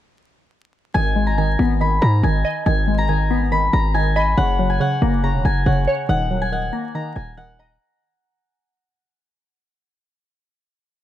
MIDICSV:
0, 0, Header, 1, 4, 480
1, 0, Start_track
1, 0, Key_signature, 5, "minor"
1, 0, Tempo, 428571
1, 1062, Time_signature, 4, 2, 24, 8
1, 12363, End_track
2, 0, Start_track
2, 0, Title_t, "Harp"
2, 0, Program_c, 0, 46
2, 1057, Note_on_c, 0, 80, 109
2, 1420, Note_on_c, 0, 82, 77
2, 1540, Note_off_c, 0, 80, 0
2, 1544, Note_on_c, 0, 80, 79
2, 2027, Note_on_c, 0, 83, 84
2, 2094, Note_off_c, 0, 82, 0
2, 2256, Note_on_c, 0, 82, 77
2, 2324, Note_off_c, 0, 83, 0
2, 2501, Note_off_c, 0, 80, 0
2, 2506, Note_on_c, 0, 80, 80
2, 2975, Note_off_c, 0, 80, 0
2, 2980, Note_on_c, 0, 80, 95
2, 3338, Note_off_c, 0, 82, 0
2, 3343, Note_on_c, 0, 82, 89
2, 3453, Note_off_c, 0, 80, 0
2, 3457, Note_on_c, 0, 80, 75
2, 3940, Note_on_c, 0, 83, 85
2, 4007, Note_off_c, 0, 82, 0
2, 4179, Note_on_c, 0, 82, 93
2, 4246, Note_off_c, 0, 83, 0
2, 4412, Note_off_c, 0, 80, 0
2, 4417, Note_on_c, 0, 80, 88
2, 4660, Note_on_c, 0, 83, 79
2, 4728, Note_off_c, 0, 82, 0
2, 4899, Note_on_c, 0, 78, 107
2, 5256, Note_off_c, 0, 80, 0
2, 5260, Note_on_c, 0, 80, 79
2, 5380, Note_off_c, 0, 78, 0
2, 5384, Note_on_c, 0, 78, 87
2, 5865, Note_on_c, 0, 82, 82
2, 5932, Note_off_c, 0, 83, 0
2, 6102, Note_off_c, 0, 80, 0
2, 6106, Note_on_c, 0, 80, 84
2, 6334, Note_off_c, 0, 78, 0
2, 6338, Note_on_c, 0, 78, 75
2, 6818, Note_off_c, 0, 78, 0
2, 6823, Note_on_c, 0, 78, 100
2, 7182, Note_off_c, 0, 80, 0
2, 7186, Note_on_c, 0, 80, 90
2, 7304, Note_off_c, 0, 78, 0
2, 7308, Note_on_c, 0, 78, 84
2, 7432, Note_off_c, 0, 82, 0
2, 7784, Note_on_c, 0, 82, 81
2, 8010, Note_off_c, 0, 80, 0
2, 8014, Note_on_c, 0, 80, 76
2, 8254, Note_off_c, 0, 78, 0
2, 8258, Note_on_c, 0, 78, 85
2, 8502, Note_off_c, 0, 82, 0
2, 8507, Note_on_c, 0, 82, 78
2, 9694, Note_off_c, 0, 80, 0
2, 10059, Note_off_c, 0, 78, 0
2, 10074, Note_off_c, 0, 82, 0
2, 12363, End_track
3, 0, Start_track
3, 0, Title_t, "Synth pluck"
3, 0, Program_c, 1, 84
3, 1062, Note_on_c, 1, 51, 89
3, 1300, Note_on_c, 1, 56, 72
3, 1531, Note_off_c, 1, 51, 0
3, 1545, Note_on_c, 1, 51, 80
3, 1783, Note_on_c, 1, 59, 95
3, 2009, Note_off_c, 1, 51, 0
3, 2023, Note_on_c, 1, 51, 78
3, 2491, Note_off_c, 1, 51, 0
3, 2501, Note_off_c, 1, 56, 0
3, 2504, Note_on_c, 1, 51, 88
3, 2740, Note_on_c, 1, 75, 83
3, 2968, Note_off_c, 1, 51, 0
3, 2981, Note_on_c, 1, 51, 89
3, 2982, Note_off_c, 1, 59, 0
3, 3222, Note_on_c, 1, 56, 74
3, 3447, Note_off_c, 1, 51, 0
3, 3460, Note_on_c, 1, 51, 81
3, 3703, Note_on_c, 1, 59, 98
3, 3927, Note_off_c, 1, 51, 0
3, 3940, Note_on_c, 1, 51, 78
3, 3941, Note_off_c, 1, 75, 0
3, 4406, Note_off_c, 1, 51, 0
3, 4419, Note_on_c, 1, 51, 92
3, 4422, Note_off_c, 1, 56, 0
3, 4658, Note_on_c, 1, 75, 88
3, 4900, Note_off_c, 1, 51, 0
3, 4900, Note_off_c, 1, 75, 0
3, 4901, Note_on_c, 1, 49, 89
3, 4902, Note_off_c, 1, 59, 0
3, 5143, Note_on_c, 1, 54, 73
3, 5364, Note_off_c, 1, 49, 0
3, 5378, Note_on_c, 1, 49, 80
3, 5623, Note_on_c, 1, 58, 100
3, 5849, Note_off_c, 1, 49, 0
3, 5862, Note_on_c, 1, 49, 78
3, 6328, Note_off_c, 1, 49, 0
3, 6341, Note_on_c, 1, 49, 88
3, 6342, Note_off_c, 1, 54, 0
3, 6580, Note_on_c, 1, 73, 86
3, 6820, Note_on_c, 1, 51, 91
3, 6821, Note_off_c, 1, 49, 0
3, 6821, Note_off_c, 1, 73, 0
3, 6822, Note_off_c, 1, 58, 0
3, 7062, Note_on_c, 1, 54, 77
3, 7292, Note_off_c, 1, 51, 0
3, 7306, Note_on_c, 1, 51, 79
3, 7536, Note_on_c, 1, 58, 101
3, 7768, Note_off_c, 1, 51, 0
3, 7782, Note_on_c, 1, 51, 84
3, 8245, Note_off_c, 1, 51, 0
3, 8259, Note_on_c, 1, 51, 89
3, 8262, Note_off_c, 1, 54, 0
3, 8502, Note_on_c, 1, 75, 85
3, 8739, Note_off_c, 1, 58, 0
3, 8740, Note_off_c, 1, 51, 0
3, 8742, Note_off_c, 1, 75, 0
3, 12363, End_track
4, 0, Start_track
4, 0, Title_t, "808-style bass"
4, 0, Program_c, 2, 38
4, 1062, Note_on_c, 2, 32, 114
4, 1753, Note_off_c, 2, 32, 0
4, 1781, Note_on_c, 2, 32, 103
4, 2242, Note_off_c, 2, 32, 0
4, 2261, Note_on_c, 2, 44, 108
4, 2492, Note_off_c, 2, 44, 0
4, 2501, Note_on_c, 2, 32, 107
4, 2732, Note_off_c, 2, 32, 0
4, 2981, Note_on_c, 2, 32, 110
4, 4137, Note_off_c, 2, 32, 0
4, 4181, Note_on_c, 2, 32, 106
4, 4873, Note_off_c, 2, 32, 0
4, 4901, Note_on_c, 2, 30, 110
4, 5362, Note_off_c, 2, 30, 0
4, 5621, Note_on_c, 2, 30, 109
4, 5981, Note_on_c, 2, 28, 96
4, 5998, Note_off_c, 2, 30, 0
4, 6096, Note_off_c, 2, 28, 0
4, 6102, Note_on_c, 2, 30, 107
4, 6332, Note_off_c, 2, 30, 0
4, 6342, Note_on_c, 2, 30, 107
4, 6572, Note_off_c, 2, 30, 0
4, 6821, Note_on_c, 2, 27, 113
4, 7513, Note_off_c, 2, 27, 0
4, 8021, Note_on_c, 2, 27, 110
4, 8713, Note_off_c, 2, 27, 0
4, 12363, End_track
0, 0, End_of_file